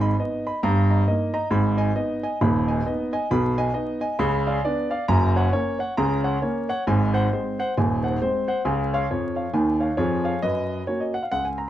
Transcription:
0.00 0.12 G#1 medium
0.00 0.12 G#2 medium
0.00 0.14 D#5 medium
0.00 0.14 B5 medium
0.19 0.43 B3 soft
0.19 0.44 D#4 soft
0.19 0.45 D#5 medium
0.46 0.59 D#5 medium
0.46 0.59 B5 medium
0.63 1.01 G1 medium
0.63 1.01 G2 loud
0.63 0.89 A#5 medium
0.90 1.03 D#5 soft
0.90 1.03 A#5 medium
1.07 1.32 A#3 medium
1.07 1.32 D#4 soft
1.07 1.32 D#5 medium
1.34 1.47 D#5 medium
1.34 1.47 A#5 medium
1.50 1.89 G#1 medium
1.50 1.89 G#2 medium
1.50 1.79 B5 medium
1.77 1.91 D#5 medium
1.77 1.91 G#5 medium
1.96 2.20 B3 soft
1.96 2.21 D#4 medium
1.96 2.22 D#5 medium
2.23 2.36 D#5 medium
2.23 2.36 G#5 medium
2.41 2.79 D#1 medium
2.41 2.79 D#2 medium
2.41 2.69 B5 medium
2.68 2.81 D#5 medium
2.68 2.81 G#5 medium
2.86 3.11 B3 medium
2.86 3.11 D#4 medium
2.86 3.11 D#5 medium
3.13 3.26 D#5 medium
3.13 3.26 G#5 medium
3.31 3.69 B1 medium
3.31 3.69 B2 medium
3.31 3.58 B5 medium
3.58 3.71 D#5 medium
3.58 3.71 G#5 medium
3.74 3.99 B3 medium
3.74 3.99 D#4 medium
3.74 3.99 D#5 medium
4.01 4.14 D#5 medium
4.01 4.14 G#5 medium
4.19 4.57 C#2 medium
4.19 4.58 C#3 loud
4.19 4.47 B5 medium
4.47 4.60 D5 medium
4.47 4.60 F5 medium
4.65 4.89 B3 medium
4.65 4.90 D4 medium
4.65 4.89 D5 medium
4.90 5.04 D5 medium
4.90 5.04 F5 medium
5.08 5.47 F#1 loud
5.08 5.47 F#2 loud
5.08 5.36 A#5 medium
5.36 5.49 C#5 medium
5.36 5.49 F#5 medium
5.53 5.78 A#3 medium
5.53 5.78 C#4 soft
5.53 5.78 C#5 medium
5.79 5.93 C#5 medium
5.79 5.93 F#5 medium
5.97 6.36 C#2 medium
5.97 6.36 C#3 medium
5.97 6.25 A#5 medium
6.24 6.37 C#5 medium
6.24 6.37 F#5 medium
6.42 6.67 A#3 medium
6.42 6.67 C#4 medium
6.42 6.68 C#5 medium
6.69 6.82 C#5 medium
6.69 6.82 F#5 medium
6.87 7.25 G#1 medium
6.87 7.25 G#2 medium
6.87 7.15 G#5 medium
7.14 7.27 C5 medium
7.14 7.27 F#5 medium
7.33 7.57 G#3 soft
7.33 7.57 C4 soft
7.33 7.58 C5 medium
7.59 7.72 C5 medium
7.59 7.72 F#5 medium
7.77 8.15 D#1 medium
7.77 8.15 D#2 medium
7.77 8.04 G#5 medium
8.03 8.16 C5 medium
8.03 8.17 F#5 medium
8.22 8.46 G#3 soft
8.22 8.47 C4 medium
8.22 8.46 C5 medium
8.48 8.61 C5 medium
8.48 8.61 F#5 medium
8.65 9.03 C#2 medium
8.65 9.03 C#3 medium
8.65 8.93 G#5 medium
8.94 9.06 C#5 medium
8.94 9.06 F5 medium
9.11 9.44 F2 medium
9.11 9.44 F3 medium
9.11 9.35 C#5 medium
9.36 9.49 C#5 medium
9.36 9.49 F5 medium
9.53 9.88 D#2 medium
9.53 9.87 D#3 medium
9.53 9.82 G#5 medium
9.80 9.94 C#5 medium
9.80 9.94 F5 medium
9.97 10.32 F2 medium
9.97 10.32 F3 medium
9.97 10.41 G#4 medium
9.97 10.23 C#5 medium
10.25 10.38 C#5 medium
10.25 10.38 F5 medium
10.42 10.81 F#2 medium
10.42 10.85 B4 medium
10.42 10.81 D#5 medium
10.87 11.12 A#3 soft
10.87 11.13 C#4 soft
10.87 11.13 F#4 soft
10.87 11.01 C#5 medium
11.00 11.14 D#5 medium
11.14 11.24 F#5 medium
11.23 11.32 F5 medium
11.31 11.69 C#2 medium
11.31 11.45 F#5 medium
11.45 11.59 G#5 medium
11.58 11.68 A#5 medium

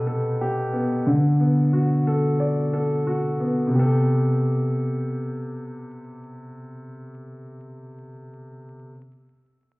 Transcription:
0.00 0.40 B2 medium
0.00 1.08 C3 medium
0.00 0.40 G4 medium
0.00 0.07 A4 medium
0.00 1.07 B4 medium
0.07 1.07 A4 medium
0.41 1.07 G4 medium
0.73 1.06 B3 medium
1.06 2.73 D3 medium
1.40 3.06 B3 medium
1.73 3.05 F#4 medium
2.07 2.72 A4 medium
2.40 3.73 D5 medium
2.73 3.73 A4 medium
3.07 3.73 F#4 medium
3.40 3.70 B3 medium
3.67 7.83 C3 medium
3.71 7.85 B3 medium
3.75 7.87 G4 medium
3.75 7.89 A4 medium

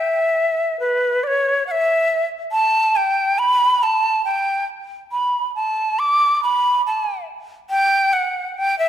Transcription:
0.00 0.79 E5 medium
0.80 1.25 B4 medium
1.24 1.66 C#5 medium
1.24 1.28 D5 medium
1.67 1.72 F#5 medium
1.71 2.28 E5 medium
2.52 2.98 A5 medium
2.96 3.40 G5 medium
3.39 3.85 B5 medium
3.83 4.25 A5 medium
4.25 4.65 G5 medium
5.12 5.52 B5 medium
5.55 6.01 A5 medium
5.99 6.41 D6 medium
6.43 6.82 B5 medium
6.87 7.25 A5 medium
7.70 8.14 G5 loud
8.13 8.59 F#5 medium
8.58 8.78 G5 loud
8.79 8.89 E5 medium

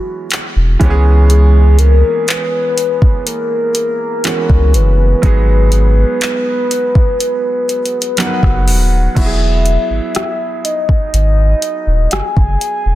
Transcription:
0.00 0.76 E3 medium
0.00 0.77 G#3 medium
0.00 0.77 B3 medium
0.00 0.78 C#4 medium
0.00 0.78 F#4 medium
0.00 0.81 F#4 loud
0.31 clap loud
0.31 closed hi-hat medium
0.56 0.76 E1 medium
0.79 2.03 C#2 medium
0.79 4.20 E3 medium
0.79 4.21 G#3 medium
0.79 4.21 B3 medium
0.79 4.22 C#4 medium
0.79 kick loud
0.79 closed hi-hat medium
0.84 0.89 G4 medium
0.90 4.26 G#4 medium
1.30 1.80 G#4 loud
1.30 closed hi-hat medium
1.79 2.30 A#4 loud
1.79 closed hi-hat medium
2.28 3.28 B4 loud
2.28 clap loud
2.28 closed hi-hat medium
2.78 closed hi-hat medium
3.02 kick loud
3.27 4.76 A#4 loud
3.27 closed hi-hat medium
3.75 closed hi-hat medium
4.24 5.23 E3 medium
4.24 5.21 G#3 soft
4.24 5.22 B3 soft
4.24 5.24 C#4 medium
4.24 5.24 F#4 medium
4.24 clap loud
4.24 closed hi-hat medium
4.50 4.75 C#2 medium
4.50 kick medium
4.74 5.15 F#1 medium
4.74 8.19 B4 loud
4.74 closed hi-hat medium
5.22 6.05 G#1 loud
5.22 8.14 F#3 medium
5.22 8.14 G#3 medium
5.22 8.15 B3 medium
5.22 8.15 D#4 medium
5.22 8.16 G#4 medium
5.22 kick loud
5.22 closed hi-hat medium
5.72 closed hi-hat medium
6.21 clap loud
6.21 closed hi-hat medium
6.71 closed hi-hat medium
6.95 kick medium
7.20 closed hi-hat medium
7.69 closed hi-hat soft
7.86 closed hi-hat soft
8.02 closed hi-hat medium
8.17 9.14 F#3 medium
8.17 9.15 B3 medium
8.17 9.17 D#4 medium
8.17 8.26 A#4 medium
8.17 9.19 F#5 medium
8.17 clap loud
8.17 closed hi-hat medium
8.26 9.21 B4 medium
8.43 8.69 F#1 medium
8.43 kick medium
8.43 cross-stick medium
8.67 9.08 D#1 loud
8.67 open hi-hat medium
9.15 9.78 E1 loud
9.15 12.95 F#3 medium
9.15 12.95 B3 medium
9.15 12.95 E4 medium
9.15 9.24 F#4 medium
9.15 10.66 E5 loud
9.15 kick loud
9.15 closed hi-hat medium
9.15 crash medium
9.26 12.95 G#4 medium
9.66 closed hi-hat medium
9.90 10.00 G#1 soft
10.15 cross-stick loud
10.15 closed hi-hat medium
10.65 12.13 D#5 loud
10.65 closed hi-hat medium
10.89 kick loud
11.13 11.54 G#1 loud
11.13 closed hi-hat medium
11.62 closed hi-hat medium
11.87 12.07 D#1 medium
12.11 12.22 F#1 soft
12.11 12.95 G#5 loud
12.11 cross-stick loud
12.11 closed hi-hat medium
12.36 12.57 F#1 medium
12.36 kick medium
12.61 closed hi-hat medium
12.86 12.95 D#1 medium

